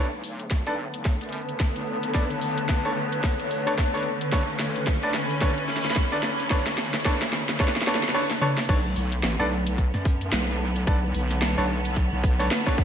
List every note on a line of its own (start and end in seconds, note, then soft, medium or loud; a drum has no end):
0.00 0.22 B1 medium
0.00 8.10 D3 medium
0.00 8.14 D3 medium
0.00 8.10 A3 medium
0.00 4.29 B3 medium
0.12 8.14 B4 medium
0.12 4.15 A5 medium
0.23 0.49 B1 medium
0.23 open hi-hat medium
0.39 closed hi-hat soft
0.44 8.14 C#5 medium
0.51 0.64 A1 loud
0.51 kick medium
0.51 snare soft
0.51 closed hi-hat medium
0.67 1.19 B1 loud
0.67 0.72 D4 medium
0.67 0.72 A4 medium
0.67 0.72 B4 medium
0.67 0.72 D5 loud
0.67 closed hi-hat soft
0.94 closed hi-hat medium
1.05 kick loud
1.05 snare soft
1.05 closed hi-hat medium
1.21 1.58 F#2 medium
1.21 closed hi-hat soft
1.23 closed hi-hat soft
1.29 closed hi-hat soft
1.33 closed hi-hat soft
1.33 open hi-hat medium
1.38 closed hi-hat soft
1.41 closed hi-hat soft
1.49 closed hi-hat soft
1.60 2.13 B1 loud
1.60 kick loud
1.60 snare medium
1.60 closed hi-hat medium
1.76 closed hi-hat soft
2.03 closed hi-hat soft
2.14 2.40 B1 medium
2.14 2.22 D4 medium
2.14 2.22 A4 medium
2.14 2.22 B4 medium
2.14 2.22 D5 medium
2.14 kick loud
2.14 snare medium
2.14 closed hi-hat medium
2.30 closed hi-hat soft
2.41 2.82 B1 loud
2.41 open hi-hat medium
2.58 closed hi-hat soft
2.69 kick medium
2.69 snare medium
2.69 closed hi-hat medium
2.85 3.37 B1 medium
2.85 2.91 D4 medium
2.85 2.91 A4 medium
2.85 2.91 B4 medium
2.85 2.91 C#5 medium
2.85 closed hi-hat soft
3.12 closed hi-hat medium
3.24 kick loud
3.24 snare medium
3.24 closed hi-hat medium
3.39 3.76 B1 loud
3.39 closed hi-hat soft
3.51 open hi-hat medium
3.67 3.72 D4 medium
3.67 3.72 A4 medium
3.67 3.72 B4 medium
3.67 3.72 C#5 loud
3.67 closed hi-hat medium
3.78 kick medium
3.78 snare medium
3.78 closed hi-hat medium
3.94 4.03 D4 medium
3.94 4.03 A4 medium
3.94 4.03 B4 medium
3.94 4.03 C#5 loud
3.94 closed hi-hat soft
3.97 8.15 B5 medium
3.97 closed hi-hat soft
4.00 closed hi-hat soft
4.03 closed hi-hat soft
4.21 closed hi-hat medium
4.32 4.58 B1 loud
4.32 8.11 C#4 medium
4.32 4.40 D4 medium
4.32 4.40 A4 medium
4.32 4.40 B4 medium
4.32 4.40 C#5 loud
4.32 kick loud
4.32 snare medium
4.32 closed hi-hat medium
4.59 4.85 B1 loud
4.59 snare medium
4.59 open hi-hat medium
4.75 closed hi-hat soft
4.87 5.01 A1 medium
4.87 kick medium
4.87 snare medium
4.87 closed hi-hat medium
5.03 5.55 B1 loud
5.03 5.09 D4 medium
5.03 5.09 A4 medium
5.03 5.09 B4 medium
5.03 5.09 D5 loud
5.03 closed hi-hat soft
5.14 snare medium
5.30 closed hi-hat medium
5.41 5.49 D4 medium
5.41 5.49 A4 medium
5.41 5.49 B4 medium
5.41 5.49 C#5 loud
5.41 kick loud
5.41 snare medium
5.41 closed hi-hat medium
5.57 5.94 F#2 loud
5.57 closed hi-hat soft
5.69 snare soft
5.69 open hi-hat soft
5.73 snare soft
5.73 open hi-hat soft
5.77 open hi-hat soft
5.81 snare medium
5.81 closed hi-hat medium
5.81 open hi-hat soft
5.85 open hi-hat soft
5.88 snare medium
5.88 open hi-hat soft
5.90 open hi-hat soft
5.93 6.49 B1 loud
5.93 kick loud
5.93 snare medium
5.93 closed hi-hat medium
5.93 open hi-hat medium
6.12 6.18 D4 medium
6.12 6.18 A4 medium
6.12 6.18 B4 medium
6.12 6.18 D5 loud
6.12 closed hi-hat soft
6.23 snare medium
6.39 closed hi-hat medium
6.50 6.76 B1 loud
6.50 6.59 D4 loud
6.50 6.59 A4 medium
6.50 6.59 B4 medium
6.50 6.59 C#5 loud
6.50 kick loud
6.50 snare medium
6.50 closed hi-hat medium
6.67 snare medium
6.67 closed hi-hat soft
6.78 7.19 B1 medium
6.78 snare medium
6.78 open hi-hat medium
6.94 snare medium
7.00 closed hi-hat soft
7.05 7.13 D4 loud
7.05 7.13 A4 medium
7.05 7.13 B4 medium
7.05 7.13 C#5 loud
7.05 kick medium
7.05 snare loud
7.05 closed hi-hat medium
7.21 7.58 D2 loud
7.21 snare medium
7.21 closed hi-hat soft
7.33 snare medium
7.49 snare medium
7.49 closed hi-hat soft
7.60 8.01 B1 medium
7.60 7.68 D4 loud
7.60 7.68 A4 loud
7.60 7.68 B4 medium
7.60 7.68 C#5 loud
7.60 kick loud
7.60 snare medium
7.60 closed hi-hat medium
7.68 snare medium
7.76 snare medium
7.76 closed hi-hat soft
7.82 snare medium
7.87 7.95 D4 loud
7.87 7.95 A4 loud
7.87 7.95 B4 loud
7.87 7.95 C#5 loud
7.87 snare loud
7.87 open hi-hat medium
7.95 snare medium
8.03 snare medium
8.03 closed hi-hat medium
8.09 snare medium
8.14 8.22 D4 loud
8.14 8.22 A4 medium
8.14 8.22 B4 loud
8.14 8.22 C#5 loud
8.30 snare medium
8.42 8.49 D4 loud
8.42 8.49 A4 loud
8.42 8.50 B4 loud
8.42 8.49 C#5 loud
8.42 mid tom medium
8.58 snare medium
8.69 8.95 B1 medium
8.69 12.84 D3 medium
8.69 12.84 A3 medium
8.69 12.84 B3 loud
8.69 8.77 D4 loud
8.69 8.77 A4 medium
8.69 8.77 B4 medium
8.69 8.77 C#5 loud
8.69 kick loud
8.69 closed hi-hat medium
8.69 crash loud
8.96 9.22 B1 loud
8.96 open hi-hat medium
9.12 closed hi-hat medium
9.22 9.37 A1 loud
9.22 12.84 A5 medium
9.22 snare loud
9.22 closed hi-hat medium
9.40 9.92 B1 loud
9.40 9.45 D4 loud
9.40 9.45 A4 medium
9.40 9.45 B4 medium
9.40 9.45 D5 loud
9.67 closed hi-hat medium
9.78 kick medium
9.78 closed hi-hat medium
9.94 10.31 F#2 loud
9.94 snare soft
10.05 kick loud
10.05 open hi-hat medium
10.21 closed hi-hat medium
10.32 10.86 B1 loud
10.32 snare loud
10.32 closed hi-hat medium
10.76 closed hi-hat medium
10.87 11.13 B1 loud
10.87 10.95 D4 medium
10.87 10.95 A4 medium
10.87 10.95 B4 medium
10.87 10.95 D5 medium
10.87 kick loud
10.87 closed hi-hat medium
11.15 11.55 B1 loud
11.15 open hi-hat medium
11.31 snare soft
11.31 closed hi-hat medium
11.42 snare loud
11.42 closed hi-hat medium
11.58 12.10 B1 loud
11.58 11.63 D4 medium
11.58 11.63 A4 medium
11.58 11.63 B4 medium
11.58 11.63 C#5 medium
11.85 closed hi-hat medium
11.96 kick medium
11.96 closed hi-hat medium
12.12 12.49 B1 loud
12.24 kick loud
12.24 open hi-hat medium
12.39 12.45 D4 loud
12.39 12.45 A4 medium
12.39 12.45 B4 medium
12.39 12.45 C#5 loud
12.39 snare soft
12.39 closed hi-hat medium
12.51 snare loud
12.51 closed hi-hat medium
12.66 12.75 D4 medium
12.66 12.75 A4 medium
12.66 12.75 B4 medium
12.66 12.75 C#5 loud
12.66 kick medium
12.66 snare soft
12.78 kick loud
12.78 snare soft